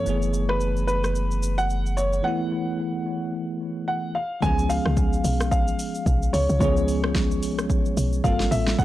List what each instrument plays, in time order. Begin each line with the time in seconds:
Already playing: grand piano C#5
0.04 sub bass F#1, tine electric piano E3 A3 B3, shaker
0.09 tine electric piano G#4
0.22 shaker
0.34 shaker
0.49 grand piano B4, cross-stick
0.60 shaker
0.77 shaker
0.87 grand piano B4, shaker
1.04 cross-stick, shaker
1.15 shaker
1.31 shaker
1.43 shaker
1.58 grand piano F#5, shaker
1.70 shaker
1.86 shaker
1.97 grand piano C#5, shaker
2.13 shaker
2.23 tine electric piano E3 A3 B3, grand piano F#5
2.28 tine electric piano E4
3.88 grand piano F#5
4.15 grand piano F5
4.41 log drum bass C#2, tine electric piano E3 G#3 B3 C#4, grand piano G#5, kick, shaker
4.46 tine electric piano F3 G#4
4.59 shaker
4.70 grand piano F5, open hi-hat, shaker
4.86 log drum bass C#2, cross-stick
4.97 kick, shaker
5.13 shaker
5.24 log drum bass B1, open hi-hat, shaker
5.40 cross-stick, shaker
5.51 grand piano F5, kick, shaker
5.68 shaker
5.79 open hi-hat, shaker
5.95 shaker
6.06 log drum bass B1, kick, shaker
6.22 shaker
6.33 log drum bass C#2, grand piano C#5, open hi-hat, shaker
6.49 log drum bass C#2, shaker
6.59 log drum bass C#2, tine electric piano F3 G#3 B3 C#4, grand piano C#5, kick, shaker
6.64 tine electric piano G#4
6.77 shaker
6.88 open hi-hat, shaker
7.04 cross-stick
7.15 kick, snare, shaker
7.31 shaker
7.43 log drum bass B1, open hi-hat, shaker
7.58 cross-stick, shaker
7.70 kick, shaker
7.86 shaker
7.97 log drum bass B1, open hi-hat, shaker
8.13 shaker
8.24 log drum bass G1, tine electric piano G3 A#3 C4 F4 A4, grand piano F5, kick, shaker
8.40 snare, shaker
8.51 log drum bass A1, grand piano E5, open hi-hat, shaker
8.67 snare, shaker
8.77 log drum bass F#1, tine electric piano F#3 A3 B3 E4, grand piano F#5, kick, shaker